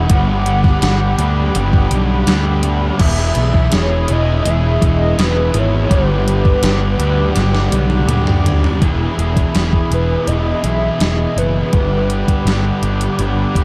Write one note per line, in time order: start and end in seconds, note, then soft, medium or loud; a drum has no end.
0.00 0.10 B3 medium
0.00 1.92 F#5 loud
0.00 8.78 B5 medium
0.09 0.72 G1 medium
0.09 0.81 G2 medium
0.09 0.48 D3 medium
0.09 0.82 G3 medium
0.09 0.45 G3 loud
0.09 0.83 B3 loud
0.09 0.83 D4 loud
0.09 2.98 G4 medium
0.09 0.84 G4 loud
0.09 2.98 F#5 medium
0.09 2.98 D6 medium
0.09 kick loud
0.09 closed hi-hat loud
0.46 0.83 D3 medium
0.46 0.84 G3 medium
0.46 closed hi-hat medium
0.64 kick medium
0.64 snare soft
0.82 1.14 G1 medium
0.82 1.52 G2 medium
0.82 1.21 D3 medium
0.82 1.54 G3 medium
0.82 1.18 G3 medium
0.82 1.22 B3 medium
0.82 1.20 D4 medium
0.82 1.19 G4 medium
0.82 snare loud
0.82 closed hi-hat loud
1.18 1.50 D2 medium
1.18 1.54 D3 medium
1.18 1.55 G3 medium
1.18 1.55 D4 medium
1.18 1.56 G4 medium
1.18 closed hi-hat medium
1.22 1.55 B3 medium
1.54 1.87 G1 medium
1.54 2.26 G2 medium
1.54 1.92 D3 loud
1.54 2.26 G3 medium
1.54 1.90 G3 loud
1.54 2.28 B3 loud
1.54 2.28 D4 medium
1.54 2.29 G4 loud
1.54 closed hi-hat loud
1.73 kick medium
1.91 2.23 B1 medium
1.91 2.27 D3 medium
1.91 2.29 G3 medium
1.91 closed hi-hat medium
2.27 2.90 D2 medium
2.27 2.98 G2 medium
2.27 2.65 D3 medium
2.27 2.98 G3 medium
2.27 2.63 G3 medium
2.27 3.00 B3 medium
2.27 2.99 D4 medium
2.27 2.99 G4 medium
2.27 snare loud
2.27 closed hi-hat medium
2.63 2.99 D3 medium
2.63 2.98 G3 medium
2.63 closed hi-hat medium
2.99 3.31 E1 medium
2.99 3.72 E2 medium
2.99 3.38 B2 loud
2.99 3.72 E3 loud
2.99 3.35 E3 loud
2.99 3.73 B3 loud
2.99 5.88 E4 medium
2.99 3.73 E4 loud
2.99 5.88 G#4 medium
2.99 3.74 G#4 loud
2.99 3.76 E5 loud
2.99 5.88 D#6 medium
2.99 kick loud
2.99 crash loud
3.35 3.68 B1 medium
3.35 3.75 E3 medium
3.35 closed hi-hat medium
3.39 3.73 B2 medium
3.54 kick medium
3.72 4.05 E1 loud
3.72 4.43 E2 medium
3.72 4.09 B2 medium
3.72 4.45 E3 medium
3.72 4.12 B3 medium
3.72 4.10 E4 medium
3.72 4.09 G#4 medium
3.72 4.14 C#5 loud
3.72 snare loud
3.72 closed hi-hat medium
3.76 4.07 E3 medium
4.08 4.41 E1 medium
4.08 4.45 B2 medium
4.08 4.47 E3 medium
4.08 4.47 B3 medium
4.08 4.47 E4 medium
4.08 4.48 G#4 medium
4.08 closed hi-hat medium
4.12 4.51 D#5 loud
4.45 4.77 E1 medium
4.45 5.17 E2 loud
4.45 4.82 B2 loud
4.45 5.17 E3 medium
4.45 4.80 E3 loud
4.45 5.18 B3 medium
4.45 5.18 E4 medium
4.45 closed hi-hat medium
4.49 5.19 G#4 loud
4.49 4.88 E5 loud
4.81 5.13 E1 medium
4.81 5.18 B2 medium
4.81 5.20 E3 medium
4.81 kick medium
4.81 closed hi-hat medium
4.87 5.24 D#5 loud
5.18 5.49 E1 medium
5.18 5.89 E2 medium
5.18 5.56 B2 medium
5.18 5.89 E3 medium
5.18 5.53 E3 medium
5.18 5.90 B3 medium
5.18 5.89 E4 medium
5.18 5.90 G#4 medium
5.18 snare loud
5.18 closed hi-hat medium
5.22 5.60 B4 medium
5.53 5.85 G#1 medium
5.53 5.90 B2 medium
5.53 5.89 E3 medium
5.53 closed hi-hat medium
5.58 5.96 C#5 medium
5.89 6.54 G1 medium
5.89 6.62 G2 loud
5.89 6.27 D3 medium
5.89 6.62 G3 loud
5.89 6.63 B3 loud
5.89 6.64 D4 loud
5.89 6.64 G4 loud
5.89 8.80 G4 medium
5.89 8.80 F#5 medium
5.89 8.79 D6 medium
5.89 kick loud
5.89 closed hi-hat medium
5.94 6.24 G3 loud
5.94 8.11 B4 loud
6.25 6.63 D3 medium
6.25 6.64 G3 medium
6.25 closed hi-hat medium
6.45 kick medium
6.62 6.94 G1 medium
6.62 7.33 G2 medium
6.62 7.00 D3 medium
6.62 7.33 G3 medium
6.62 6.97 G3 medium
6.62 7.01 B3 medium
6.62 7.00 D4 medium
6.62 6.99 G4 medium
6.62 snare loud
6.62 closed hi-hat loud
6.98 7.31 D2 medium
6.98 7.35 D3 medium
6.98 7.37 G3 medium
6.98 7.35 D4 medium
6.98 7.36 G4 medium
6.98 closed hi-hat medium
7.02 7.35 B3 medium
7.34 7.68 G1 medium
7.34 8.07 G2 loud
7.34 7.73 D3 loud
7.34 8.08 G3 loud
7.34 7.70 G3 loud
7.34 8.09 B3 medium
7.34 8.09 D4 medium
7.34 8.10 G4 loud
7.34 snare medium
7.34 closed hi-hat loud
7.55 snare medium
7.72 8.04 B1 medium
7.72 8.08 D3 medium
7.72 8.09 G3 medium
7.72 closed hi-hat medium
7.72 high tom medium
7.90 high tom medium
8.08 8.71 D2 medium
8.08 8.79 G2 medium
8.08 8.46 D3 medium
8.08 8.80 G3 medium
8.08 8.43 G3 medium
8.08 8.80 B3 medium
8.08 8.80 D4 medium
8.08 8.81 G4 medium
8.08 closed hi-hat medium
8.08 mid tom medium
8.27 mid tom medium
8.44 8.81 D3 medium
8.44 8.79 G3 medium
8.44 closed hi-hat medium
8.44 floor tom loud
8.64 floor tom medium
8.80 9.07 E1 medium
8.80 9.53 E2 medium
8.80 9.54 B2 loud
8.80 9.54 E3 loud
8.80 9.56 E3 loud
8.80 9.21 B3 loud
8.80 11.70 E4 medium
8.80 9.19 E4 loud
8.80 11.70 G#4 medium
8.80 9.17 G#4 loud
8.80 11.70 B5 medium
8.80 11.71 D#6 medium
8.80 kick loud
8.80 closed hi-hat medium
9.18 9.43 E1 medium
9.18 9.56 B3 medium
9.18 9.55 E4 medium
9.18 9.56 G#4 medium
9.18 closed hi-hat medium
9.37 kick medium
9.37 closed hi-hat medium
9.54 9.80 E1 medium
9.54 10.26 E2 medium
9.54 10.27 B2 medium
9.54 10.28 E3 medium
9.54 10.29 E3 medium
9.54 9.92 B3 medium
9.54 9.90 E4 medium
9.54 9.90 G#4 medium
9.54 snare loud
9.54 closed hi-hat medium
9.73 kick medium
9.91 10.16 E1 medium
9.91 10.65 B3 medium
9.91 10.63 E4 medium
9.91 10.62 G#4 medium
9.91 10.29 B4 medium
9.91 closed hi-hat medium
10.27 10.52 E1 loud
10.27 10.98 E2 loud
10.27 10.65 B2 loud
10.27 10.62 E3 loud
10.27 10.67 D#5 loud
10.27 closed hi-hat medium
10.63 10.89 B1 medium
10.63 10.99 B2 medium
10.63 11.01 E3 medium
10.63 11.00 B3 medium
10.63 11.00 E4 medium
10.63 11.01 G#4 medium
10.63 11.03 E5 loud
10.63 closed hi-hat medium
10.99 11.25 E1 medium
10.99 11.70 E2 medium
10.99 11.71 B2 medium
10.99 11.71 E3 medium
10.99 11.72 E3 medium
10.99 11.73 B3 medium
10.99 11.72 E4 medium
10.99 11.72 G#4 medium
10.99 11.39 D#5 loud
10.99 snare loud
10.99 closed hi-hat medium
11.37 11.61 F#1 medium
11.37 12.83 B4 loud
11.37 closed hi-hat medium
11.73 12.23 G1 medium
11.73 12.44 G2 loud
11.73 12.46 D3 medium
11.73 12.46 G3 loud
11.73 12.47 G3 loud
11.73 12.12 B3 medium
11.73 12.10 D4 loud
11.73 13.64 G4 medium
11.73 12.09 G4 loud
11.73 13.64 F#5 medium
11.73 13.64 B5 medium
11.73 13.64 D6 medium
11.73 kick loud
11.73 closed hi-hat medium
12.10 12.47 B3 medium
12.10 12.47 D4 medium
12.10 12.47 G4 medium
12.10 closed hi-hat medium
12.28 kick medium
12.28 closed hi-hat medium
12.45 12.70 G1 medium
12.45 13.18 G2 medium
12.45 13.19 D3 medium
12.45 13.19 G3 medium
12.45 13.20 G3 medium
12.45 12.86 B3 medium
12.45 12.83 D4 medium
12.45 12.82 G4 medium
12.45 snare loud
12.45 closed hi-hat medium
12.82 13.07 G1 medium
12.82 13.57 B3 medium
12.82 13.56 D4 medium
12.82 13.54 G4 medium
12.82 closed hi-hat medium
13.01 closed hi-hat medium
13.19 13.44 G1 medium
13.19 13.64 G2 loud
13.19 13.57 D3 loud
13.19 13.54 G3 loud
13.19 closed hi-hat medium
13.55 13.64 G1 medium
13.55 13.64 D3 medium
13.55 13.64 G3 medium
13.55 13.64 B3 medium
13.55 13.64 D4 medium
13.55 13.64 G4 medium
13.55 kick medium
13.55 closed hi-hat medium